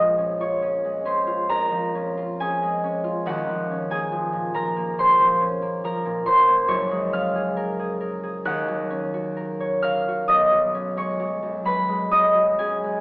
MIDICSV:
0, 0, Header, 1, 2, 480
1, 0, Start_track
1, 0, Tempo, 870827
1, 1796, Time_signature, 4, 2, 24, 8
1, 4668, Tempo, 917431
1, 7041, End_track
2, 0, Start_track
2, 0, Title_t, "Harp"
2, 0, Program_c, 0, 46
2, 0, Note_on_c, 0, 34, 74
2, 0, Note_on_c, 0, 53, 58
2, 0, Note_on_c, 0, 56, 55
2, 0, Note_on_c, 0, 61, 54
2, 0, Note_on_c, 0, 65, 60
2, 0, Note_on_c, 0, 68, 74
2, 0, Note_on_c, 0, 75, 86
2, 0, Note_on_c, 0, 77, 80
2, 0, Note_on_c, 0, 80, 91
2, 0, Note_on_c, 0, 87, 110
2, 93, Note_off_c, 0, 61, 0
2, 100, Note_on_c, 0, 61, 51
2, 216, Note_off_c, 0, 65, 0
2, 221, Note_on_c, 0, 65, 54
2, 225, Note_on_c, 0, 85, 85
2, 231, Note_on_c, 0, 73, 63
2, 336, Note_off_c, 0, 61, 0
2, 343, Note_on_c, 0, 61, 65
2, 362, Note_off_c, 0, 77, 0
2, 459, Note_off_c, 0, 56, 0
2, 466, Note_on_c, 0, 56, 55
2, 472, Note_off_c, 0, 87, 0
2, 573, Note_off_c, 0, 61, 0
2, 580, Note_on_c, 0, 61, 66
2, 582, Note_on_c, 0, 84, 91
2, 591, Note_on_c, 0, 72, 79
2, 694, Note_off_c, 0, 65, 0
2, 700, Note_on_c, 0, 65, 61
2, 824, Note_on_c, 0, 82, 127
2, 826, Note_on_c, 0, 41, 64
2, 829, Note_on_c, 0, 70, 91
2, 939, Note_off_c, 0, 53, 0
2, 945, Note_on_c, 0, 53, 61
2, 972, Note_off_c, 0, 80, 0
2, 978, Note_off_c, 0, 68, 0
2, 990, Note_off_c, 0, 84, 0
2, 1067, Note_off_c, 0, 61, 0
2, 1074, Note_on_c, 0, 61, 63
2, 1191, Note_off_c, 0, 65, 0
2, 1198, Note_on_c, 0, 65, 66
2, 1318, Note_off_c, 0, 61, 0
2, 1324, Note_on_c, 0, 61, 67
2, 1324, Note_on_c, 0, 80, 96
2, 1331, Note_on_c, 0, 68, 77
2, 1441, Note_off_c, 0, 56, 0
2, 1448, Note_on_c, 0, 56, 67
2, 1557, Note_off_c, 0, 61, 0
2, 1564, Note_on_c, 0, 61, 61
2, 1669, Note_off_c, 0, 65, 0
2, 1675, Note_on_c, 0, 65, 71
2, 1795, Note_on_c, 0, 27, 74
2, 1800, Note_on_c, 0, 39, 88
2, 1800, Note_on_c, 0, 78, 120
2, 1808, Note_off_c, 0, 34, 0
2, 1811, Note_on_c, 0, 66, 87
2, 1817, Note_off_c, 0, 41, 0
2, 1818, Note_off_c, 0, 72, 0
2, 1821, Note_off_c, 0, 80, 0
2, 1822, Note_off_c, 0, 56, 0
2, 1825, Note_off_c, 0, 68, 0
2, 1918, Note_off_c, 0, 53, 0
2, 1924, Note_on_c, 0, 53, 64
2, 2004, Note_off_c, 0, 75, 0
2, 2038, Note_off_c, 0, 61, 0
2, 2045, Note_on_c, 0, 61, 57
2, 2151, Note_on_c, 0, 58, 68
2, 2155, Note_on_c, 0, 80, 97
2, 2158, Note_on_c, 0, 68, 86
2, 2264, Note_off_c, 0, 53, 0
2, 2271, Note_on_c, 0, 53, 67
2, 2375, Note_off_c, 0, 85, 0
2, 2381, Note_off_c, 0, 73, 0
2, 2387, Note_on_c, 0, 46, 60
2, 2497, Note_off_c, 0, 82, 0
2, 2498, Note_off_c, 0, 53, 0
2, 2503, Note_on_c, 0, 53, 65
2, 2504, Note_off_c, 0, 70, 0
2, 2505, Note_on_c, 0, 82, 106
2, 2511, Note_on_c, 0, 70, 88
2, 2619, Note_off_c, 0, 58, 0
2, 2626, Note_on_c, 0, 58, 63
2, 2741, Note_off_c, 0, 46, 0
2, 2746, Note_on_c, 0, 46, 69
2, 2751, Note_on_c, 0, 84, 127
2, 2756, Note_on_c, 0, 72, 98
2, 2759, Note_off_c, 0, 80, 0
2, 2857, Note_off_c, 0, 53, 0
2, 2864, Note_on_c, 0, 53, 71
2, 2974, Note_off_c, 0, 61, 0
2, 2980, Note_on_c, 0, 61, 63
2, 3091, Note_off_c, 0, 58, 0
2, 3097, Note_on_c, 0, 58, 66
2, 3214, Note_off_c, 0, 53, 0
2, 3215, Note_off_c, 0, 70, 0
2, 3216, Note_off_c, 0, 82, 0
2, 3219, Note_on_c, 0, 53, 69
2, 3223, Note_on_c, 0, 82, 101
2, 3224, Note_on_c, 0, 70, 83
2, 3330, Note_off_c, 0, 46, 0
2, 3337, Note_on_c, 0, 46, 67
2, 3443, Note_off_c, 0, 53, 0
2, 3443, Note_off_c, 0, 84, 0
2, 3448, Note_on_c, 0, 53, 61
2, 3451, Note_on_c, 0, 84, 117
2, 3453, Note_off_c, 0, 72, 0
2, 3460, Note_on_c, 0, 72, 94
2, 3563, Note_off_c, 0, 58, 0
2, 3569, Note_on_c, 0, 58, 64
2, 3681, Note_on_c, 0, 30, 75
2, 3682, Note_on_c, 0, 42, 84
2, 3685, Note_on_c, 0, 85, 112
2, 3691, Note_on_c, 0, 73, 78
2, 3715, Note_off_c, 0, 53, 0
2, 3718, Note_off_c, 0, 46, 0
2, 3720, Note_off_c, 0, 27, 0
2, 3720, Note_off_c, 0, 65, 0
2, 3720, Note_off_c, 0, 72, 0
2, 3721, Note_off_c, 0, 39, 0
2, 3810, Note_on_c, 0, 56, 67
2, 3866, Note_off_c, 0, 84, 0
2, 3921, Note_off_c, 0, 61, 0
2, 3928, Note_on_c, 0, 61, 66
2, 3931, Note_on_c, 0, 89, 112
2, 3936, Note_on_c, 0, 77, 86
2, 3950, Note_off_c, 0, 78, 0
2, 3961, Note_off_c, 0, 66, 0
2, 4048, Note_off_c, 0, 68, 0
2, 4055, Note_on_c, 0, 68, 66
2, 4164, Note_off_c, 0, 70, 0
2, 4170, Note_on_c, 0, 70, 79
2, 4290, Note_off_c, 0, 68, 0
2, 4296, Note_on_c, 0, 68, 61
2, 4405, Note_off_c, 0, 70, 0
2, 4412, Note_on_c, 0, 70, 64
2, 4532, Note_off_c, 0, 68, 0
2, 4538, Note_on_c, 0, 68, 69
2, 4658, Note_on_c, 0, 39, 98
2, 4661, Note_on_c, 0, 90, 123
2, 4667, Note_on_c, 0, 78, 91
2, 4675, Note_off_c, 0, 30, 0
2, 4676, Note_off_c, 0, 42, 0
2, 4678, Note_off_c, 0, 56, 0
2, 4680, Note_off_c, 0, 77, 0
2, 4681, Note_off_c, 0, 68, 0
2, 4780, Note_on_c, 0, 54, 70
2, 4890, Note_off_c, 0, 61, 0
2, 4896, Note_on_c, 0, 61, 68
2, 5018, Note_on_c, 0, 66, 72
2, 5131, Note_off_c, 0, 70, 0
2, 5137, Note_on_c, 0, 70, 72
2, 5158, Note_off_c, 0, 89, 0
2, 5256, Note_off_c, 0, 73, 0
2, 5262, Note_on_c, 0, 73, 72
2, 5337, Note_off_c, 0, 82, 0
2, 5375, Note_off_c, 0, 70, 0
2, 5377, Note_on_c, 0, 89, 126
2, 5381, Note_on_c, 0, 70, 66
2, 5385, Note_on_c, 0, 77, 94
2, 5506, Note_off_c, 0, 66, 0
2, 5512, Note_on_c, 0, 66, 69
2, 5615, Note_on_c, 0, 87, 114
2, 5617, Note_on_c, 0, 35, 85
2, 5621, Note_on_c, 0, 75, 98
2, 5641, Note_off_c, 0, 58, 0
2, 5643, Note_off_c, 0, 39, 0
2, 5644, Note_off_c, 0, 70, 0
2, 5646, Note_off_c, 0, 77, 0
2, 5732, Note_off_c, 0, 54, 0
2, 5739, Note_on_c, 0, 54, 67
2, 5775, Note_off_c, 0, 85, 0
2, 5788, Note_off_c, 0, 89, 0
2, 5853, Note_off_c, 0, 61, 0
2, 5859, Note_on_c, 0, 61, 61
2, 5974, Note_off_c, 0, 73, 0
2, 5975, Note_on_c, 0, 56, 61
2, 5979, Note_on_c, 0, 73, 84
2, 5981, Note_on_c, 0, 85, 116
2, 6089, Note_off_c, 0, 54, 0
2, 6095, Note_on_c, 0, 54, 66
2, 6215, Note_on_c, 0, 42, 58
2, 6326, Note_off_c, 0, 54, 0
2, 6331, Note_on_c, 0, 54, 55
2, 6335, Note_on_c, 0, 83, 106
2, 6342, Note_on_c, 0, 71, 85
2, 6448, Note_off_c, 0, 56, 0
2, 6455, Note_on_c, 0, 56, 62
2, 6568, Note_off_c, 0, 87, 0
2, 6569, Note_off_c, 0, 42, 0
2, 6574, Note_on_c, 0, 42, 62
2, 6575, Note_off_c, 0, 75, 0
2, 6576, Note_on_c, 0, 87, 121
2, 6581, Note_on_c, 0, 75, 99
2, 6689, Note_off_c, 0, 54, 0
2, 6695, Note_on_c, 0, 54, 57
2, 6702, Note_off_c, 0, 90, 0
2, 6708, Note_off_c, 0, 78, 0
2, 6816, Note_off_c, 0, 61, 0
2, 6822, Note_on_c, 0, 61, 57
2, 6823, Note_on_c, 0, 80, 97
2, 6830, Note_on_c, 0, 68, 77
2, 6947, Note_off_c, 0, 56, 0
2, 6953, Note_on_c, 0, 56, 59
2, 7041, Note_off_c, 0, 35, 0
2, 7041, Note_off_c, 0, 42, 0
2, 7041, Note_off_c, 0, 54, 0
2, 7041, Note_off_c, 0, 56, 0
2, 7041, Note_off_c, 0, 61, 0
2, 7041, Note_off_c, 0, 66, 0
2, 7041, Note_off_c, 0, 68, 0
2, 7041, Note_off_c, 0, 71, 0
2, 7041, Note_off_c, 0, 73, 0
2, 7041, Note_off_c, 0, 75, 0
2, 7041, Note_off_c, 0, 80, 0
2, 7041, Note_off_c, 0, 83, 0
2, 7041, Note_off_c, 0, 85, 0
2, 7041, Note_off_c, 0, 87, 0
2, 7041, End_track
0, 0, End_of_file